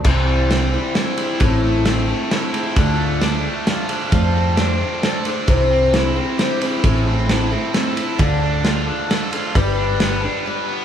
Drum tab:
CC |x-----|------|------|------|
RD |--x-xx|x-x-xx|x-x-xx|x-x-xx|
SD |--o-o-|--o-o-|--o-o-|--o-o-|
BD |o-----|o-----|o-----|o-----|

CC |------|------|------|------|
RD |x-x-xx|x-x-xx|x-x-xx|x-x---|
SD |--o-o-|--o-o-|--o-o-|--o---|
BD |o-----|o-----|o-----|o-----|